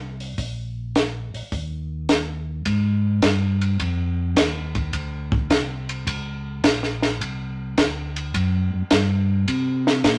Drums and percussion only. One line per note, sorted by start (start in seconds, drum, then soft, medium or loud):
0.20 open hi-hat soft
0.38 kick soft
0.38 open hi-hat soft
0.96 snare medium
0.96 closed hi-hat soft
1.34 open hi-hat soft
1.52 kick soft
1.52 open hi-hat soft
2.09 snare medium
2.09 closed hi-hat medium
2.65 kick soft
2.65 ride medium
3.22 kick soft
3.22 snare medium
3.22 hi-hat pedal medium
3.22 ride medium
3.61 ride soft
3.80 kick soft
3.80 ride medium
4.36 kick soft
4.36 snare medium
4.36 hi-hat pedal medium
4.36 ride medium
4.75 kick soft
4.75 ride soft
4.93 kick soft
4.93 ride medium
5.32 kick medium
5.50 kick soft
5.50 snare medium
5.50 hi-hat pedal medium
5.50 ride medium
5.89 ride soft
6.07 kick soft
6.07 ride medium
6.64 kick soft
6.64 snare medium
6.64 hi-hat pedal medium
6.64 ride medium
6.83 snare soft
7.02 snare soft
7.02 ride soft
7.21 kick soft
7.21 ride medium
7.78 kick soft
7.78 snare medium
7.78 hi-hat pedal soft
7.78 ride medium
8.16 ride soft
8.34 kick soft
8.34 ride medium
8.91 kick soft
8.91 snare medium
8.91 hi-hat pedal medium
8.91 ride medium
9.48 kick soft
9.48 ride medium
9.87 snare medium
10.04 kick soft
10.04 snare medium
10.04 hi-hat pedal medium
10.04 ride medium